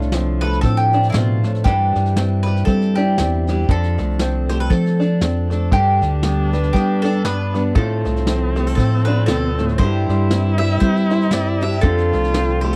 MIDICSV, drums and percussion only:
0, 0, Header, 1, 2, 480
1, 0, Start_track
1, 0, Tempo, 509338
1, 1558, Time_signature, 4, 2, 24, 8
1, 12024, End_track
2, 0, Start_track
2, 0, Title_t, "Drums"
2, 17, Note_on_c, 9, 38, 28
2, 111, Note_off_c, 9, 38, 0
2, 113, Note_on_c, 9, 38, 89
2, 208, Note_off_c, 9, 38, 0
2, 394, Note_on_c, 9, 38, 30
2, 488, Note_off_c, 9, 38, 0
2, 494, Note_on_c, 9, 38, 29
2, 588, Note_off_c, 9, 38, 0
2, 595, Note_on_c, 9, 38, 28
2, 598, Note_on_c, 9, 36, 72
2, 689, Note_off_c, 9, 38, 0
2, 692, Note_off_c, 9, 36, 0
2, 736, Note_on_c, 9, 38, 27
2, 831, Note_off_c, 9, 38, 0
2, 873, Note_on_c, 9, 38, 29
2, 967, Note_off_c, 9, 38, 0
2, 973, Note_on_c, 9, 38, 27
2, 1068, Note_off_c, 9, 38, 0
2, 1073, Note_on_c, 9, 38, 98
2, 1168, Note_off_c, 9, 38, 0
2, 1352, Note_on_c, 9, 38, 32
2, 1446, Note_off_c, 9, 38, 0
2, 1457, Note_on_c, 9, 38, 28
2, 1552, Note_off_c, 9, 38, 0
2, 1559, Note_on_c, 9, 38, 30
2, 1560, Note_on_c, 9, 36, 102
2, 1653, Note_off_c, 9, 38, 0
2, 1655, Note_off_c, 9, 36, 0
2, 1839, Note_on_c, 9, 38, 30
2, 1933, Note_off_c, 9, 38, 0
2, 1938, Note_on_c, 9, 38, 29
2, 2032, Note_off_c, 9, 38, 0
2, 2039, Note_on_c, 9, 38, 95
2, 2133, Note_off_c, 9, 38, 0
2, 2311, Note_on_c, 9, 38, 31
2, 2405, Note_off_c, 9, 38, 0
2, 2415, Note_on_c, 9, 38, 28
2, 2509, Note_off_c, 9, 38, 0
2, 2514, Note_on_c, 9, 38, 28
2, 2518, Note_on_c, 9, 36, 70
2, 2608, Note_off_c, 9, 38, 0
2, 2612, Note_off_c, 9, 36, 0
2, 2653, Note_on_c, 9, 38, 28
2, 2747, Note_off_c, 9, 38, 0
2, 2790, Note_on_c, 9, 38, 32
2, 2885, Note_off_c, 9, 38, 0
2, 2996, Note_on_c, 9, 38, 92
2, 3090, Note_off_c, 9, 38, 0
2, 3270, Note_on_c, 9, 38, 33
2, 3365, Note_off_c, 9, 38, 0
2, 3475, Note_on_c, 9, 36, 96
2, 3475, Note_on_c, 9, 38, 30
2, 3569, Note_off_c, 9, 38, 0
2, 3570, Note_off_c, 9, 36, 0
2, 3614, Note_on_c, 9, 38, 29
2, 3709, Note_off_c, 9, 38, 0
2, 3748, Note_on_c, 9, 38, 30
2, 3842, Note_off_c, 9, 38, 0
2, 3952, Note_on_c, 9, 38, 91
2, 4046, Note_off_c, 9, 38, 0
2, 4235, Note_on_c, 9, 38, 31
2, 4329, Note_off_c, 9, 38, 0
2, 4434, Note_on_c, 9, 36, 70
2, 4439, Note_on_c, 9, 38, 27
2, 4529, Note_off_c, 9, 36, 0
2, 4533, Note_off_c, 9, 38, 0
2, 4580, Note_on_c, 9, 38, 28
2, 4674, Note_off_c, 9, 38, 0
2, 4717, Note_on_c, 9, 38, 29
2, 4812, Note_off_c, 9, 38, 0
2, 4912, Note_on_c, 9, 38, 94
2, 5006, Note_off_c, 9, 38, 0
2, 5189, Note_on_c, 9, 38, 32
2, 5283, Note_off_c, 9, 38, 0
2, 5392, Note_on_c, 9, 36, 100
2, 5392, Note_on_c, 9, 38, 31
2, 5486, Note_off_c, 9, 36, 0
2, 5486, Note_off_c, 9, 38, 0
2, 5668, Note_on_c, 9, 38, 30
2, 5762, Note_off_c, 9, 38, 0
2, 5869, Note_on_c, 9, 38, 91
2, 5963, Note_off_c, 9, 38, 0
2, 6153, Note_on_c, 9, 38, 28
2, 6247, Note_off_c, 9, 38, 0
2, 6251, Note_on_c, 9, 38, 27
2, 6345, Note_off_c, 9, 38, 0
2, 6353, Note_on_c, 9, 36, 71
2, 6355, Note_on_c, 9, 38, 28
2, 6448, Note_off_c, 9, 36, 0
2, 6449, Note_off_c, 9, 38, 0
2, 6633, Note_on_c, 9, 38, 30
2, 6727, Note_off_c, 9, 38, 0
2, 6829, Note_on_c, 9, 38, 93
2, 6923, Note_off_c, 9, 38, 0
2, 7107, Note_on_c, 9, 38, 31
2, 7201, Note_off_c, 9, 38, 0
2, 7307, Note_on_c, 9, 38, 33
2, 7310, Note_on_c, 9, 36, 98
2, 7401, Note_off_c, 9, 38, 0
2, 7404, Note_off_c, 9, 36, 0
2, 7585, Note_on_c, 9, 38, 29
2, 7679, Note_off_c, 9, 38, 0
2, 7692, Note_on_c, 9, 38, 29
2, 7786, Note_off_c, 9, 38, 0
2, 7790, Note_on_c, 9, 38, 92
2, 7885, Note_off_c, 9, 38, 0
2, 8063, Note_on_c, 9, 38, 30
2, 8158, Note_off_c, 9, 38, 0
2, 8167, Note_on_c, 9, 38, 28
2, 8261, Note_off_c, 9, 38, 0
2, 8271, Note_on_c, 9, 36, 72
2, 8273, Note_on_c, 9, 38, 30
2, 8365, Note_off_c, 9, 36, 0
2, 8367, Note_off_c, 9, 38, 0
2, 8547, Note_on_c, 9, 38, 30
2, 8641, Note_off_c, 9, 38, 0
2, 8745, Note_on_c, 9, 38, 90
2, 8840, Note_off_c, 9, 38, 0
2, 9028, Note_on_c, 9, 38, 29
2, 9122, Note_off_c, 9, 38, 0
2, 9132, Note_on_c, 9, 38, 29
2, 9225, Note_off_c, 9, 38, 0
2, 9225, Note_on_c, 9, 38, 32
2, 9231, Note_on_c, 9, 36, 99
2, 9319, Note_off_c, 9, 38, 0
2, 9325, Note_off_c, 9, 36, 0
2, 9510, Note_on_c, 9, 38, 29
2, 9604, Note_off_c, 9, 38, 0
2, 9713, Note_on_c, 9, 38, 95
2, 9807, Note_off_c, 9, 38, 0
2, 9984, Note_on_c, 9, 38, 29
2, 10078, Note_off_c, 9, 38, 0
2, 10091, Note_on_c, 9, 38, 28
2, 10185, Note_off_c, 9, 38, 0
2, 10192, Note_on_c, 9, 36, 78
2, 10192, Note_on_c, 9, 38, 29
2, 10286, Note_off_c, 9, 38, 0
2, 10287, Note_off_c, 9, 36, 0
2, 10331, Note_on_c, 9, 38, 28
2, 10425, Note_off_c, 9, 38, 0
2, 10460, Note_on_c, 9, 38, 29
2, 10554, Note_off_c, 9, 38, 0
2, 10566, Note_on_c, 9, 38, 26
2, 10658, Note_off_c, 9, 38, 0
2, 10658, Note_on_c, 9, 38, 92
2, 10752, Note_off_c, 9, 38, 0
2, 10938, Note_on_c, 9, 38, 32
2, 11032, Note_off_c, 9, 38, 0
2, 11047, Note_on_c, 9, 38, 30
2, 11142, Note_off_c, 9, 38, 0
2, 11148, Note_on_c, 9, 38, 32
2, 11152, Note_on_c, 9, 36, 98
2, 11243, Note_off_c, 9, 38, 0
2, 11246, Note_off_c, 9, 36, 0
2, 11291, Note_on_c, 9, 38, 29
2, 11386, Note_off_c, 9, 38, 0
2, 11431, Note_on_c, 9, 38, 29
2, 11526, Note_off_c, 9, 38, 0
2, 11531, Note_on_c, 9, 38, 30
2, 11626, Note_off_c, 9, 38, 0
2, 11631, Note_on_c, 9, 38, 91
2, 11725, Note_off_c, 9, 38, 0
2, 11914, Note_on_c, 9, 38, 32
2, 12008, Note_off_c, 9, 38, 0
2, 12024, End_track
0, 0, End_of_file